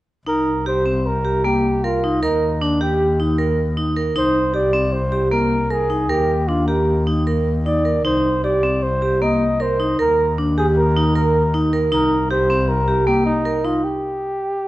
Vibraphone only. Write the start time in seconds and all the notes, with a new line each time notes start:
0.27 D#4
0.66 G4
0.86 C4
1.25 G4
1.44 A#3
1.84 A#4
2.03 D#4
2.22 A#4
2.61 D4
2.81 G4
3.19 D#4
3.38 A#4
3.77 D#4
3.96 A#4
4.16 D#4
4.54 G4
4.73 C4
5.12 G4
5.32 A#3
5.70 A#4
5.90 D#4
6.10 A#4
6.49 D4
6.68 G4
7.07 D#4
7.27 A#4
7.66 D#4
7.85 A#4
8.05 D#4
8.44 G4
8.63 C4
9.02 G4
9.22 A#3
9.60 A#4
9.80 D#4
9.99 A#4
10.38 D4
10.57 G4
10.96 D#4
11.15 A#4
11.54 D#4
11.73 A#4
11.92 D#4
12.31 G4
12.50 C4
12.88 G4
13.07 A#3
13.45 A#4
13.64 D#4